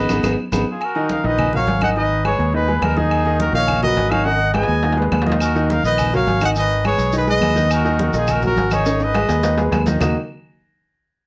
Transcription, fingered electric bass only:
0.09 0.20 G#1 loud
0.23 0.34 G#1 loud
0.52 0.63 G#1 medium
1.24 1.64 A#1 loud
1.67 2.33 G#1 medium
2.39 2.79 D#2 medium
2.81 3.48 D#2 medium
3.53 3.93 A#1 loud
3.96 4.63 G#1 medium
4.68 5.09 D#2 loud
5.11 5.78 D#2 loud
5.83 6.24 A#1 loud
6.26 6.93 G#1 loud
6.98 7.39 B1 medium
7.41 8.08 D#2 loud
8.13 8.54 A#1 loud
8.56 9.23 G#1 loud
9.28 9.69 D#2 loud
9.71 9.97 D#2 medium
10.00 10.14 D#2 loud

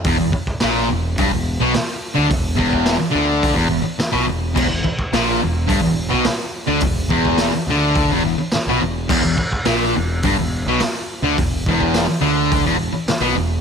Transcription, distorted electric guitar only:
0.06 0.17 E2 loud
0.18 0.31 E2 medium
0.32 muted distorted electric guitar stroke medium
0.62 0.89 A#2 medium
0.90 1.12 E2 medium
1.19 1.31 G2 loud
1.33 1.55 E2 medium
1.60 1.73 B2 loud
1.75 muted distorted electric guitar stroke medium
2.15 2.29 D3 loud
2.28 2.52 E2 medium
2.56 2.98 E2 loud
2.99 muted distorted electric guitar stroke medium
3.11 3.55 D3 loud
3.54 3.68 E2 loud
3.70 3.81 E2 medium
3.82 muted distorted electric guitar stroke medium
3.99 muted distorted electric guitar stroke medium
4.12 4.26 B2 loud
4.26 4.50 E2 medium
4.54 4.67 E2 loud
4.68 4.83 E2 medium
4.84 muted distorted electric guitar stroke medium
5.13 5.41 A#2 loud
5.42 5.64 E2 medium
5.67 5.82 G2 loud
5.82 6.06 E2 medium
6.10 6.24 B2 loud
6.26 muted distorted electric guitar stroke medium
6.67 6.81 D3 loud
6.81 7.05 E2 medium
7.10 7.53 E2 loud
7.55 muted distorted electric guitar stroke medium
7.70 8.11 D3 loud
8.10 8.23 E2 loud
8.24 8.37 E2 medium
8.38 muted distorted electric guitar stroke medium
8.55 muted distorted electric guitar stroke medium
8.68 8.81 B2 loud
8.81 9.04 E2 medium
9.09 9.23 E2 loud
9.24 9.36 E2 medium
9.37 muted distorted electric guitar stroke medium
9.65 9.94 A#2 loud
9.96 10.19 E2 medium
10.24 10.38 G2 loud
10.39 10.61 E2 medium
10.68 10.81 B2 loud
10.82 muted distorted electric guitar stroke medium
11.23 11.37 D3 loud
11.37 11.60 E2 medium
11.68 12.06 E2 loud
12.07 muted distorted electric guitar stroke medium
12.21 12.64 D3 loud
12.66 12.77 E2 loud
12.78 12.91 E2 medium
12.92 muted distorted electric guitar stroke medium
13.09 muted distorted electric guitar stroke medium
13.21 13.35 B2 loud
13.36 13.59 E2 medium

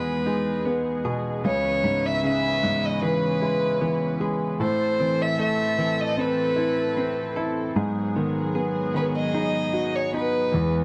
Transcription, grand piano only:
0.00 1.01 E2 soft
0.00 1.05 B2 soft
0.00 0.22 D#3 soft
0.00 0.25 G#3 soft
0.00 0.65 B3 soft
0.27 1.42 G#3 soft
0.66 1.43 B3 soft
1.05 1.44 B2 soft
1.45 4.57 C#2 soft
1.84 2.62 G#2 soft
2.23 3.78 C#3 soft
2.63 4.17 G#2 soft
3.02 3.80 E3 soft
3.42 4.19 G#3 soft
3.81 4.58 E3 soft
4.20 4.59 G#3 soft
4.60 7.72 A2 soft
5.00 5.77 E3 soft
5.39 6.93 A3 soft
5.78 7.33 E3 soft
6.17 6.96 C4 soft
6.56 7.35 E4 soft
6.97 7.74 C4 soft
7.37 7.75 E4 soft
7.76 10.49 G#2 medium
8.16 8.93 D#3 soft
8.56 10.10 B3 soft
8.94 10.49 D#3 soft
9.34 10.13 D#4 soft
9.73 10.50 F#4 soft
10.14 10.52 D#4 soft
10.54 10.84 E2 medium

